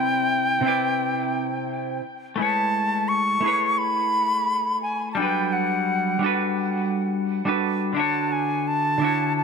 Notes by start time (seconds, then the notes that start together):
Already playing: C3 C4 E4 B4 D5 G5
0.61 C3 C4 E4
0.66 B4 D5
2.36 G#3 A3 E4 A5
2.41 B4 C#5
3.08 C#6
3.41 A3 E4 G#4
3.46 B4 C#5
3.78 B5
4.82 G#5
5.13 G3 A5
5.17 F#3 D4 A4 G5
5.22 B4
5.53 F#5
6.19 G3 D4 F#4
6.24 A4 B4
7.45 G3 D4 F#4 A4 B4
7.93 D3 D4 E4 A5
7.98 F#4 C#5
8.32 G#5
8.67 A5
8.98 D3 D4 E4
9.03 F#4 C#5
9.37 A5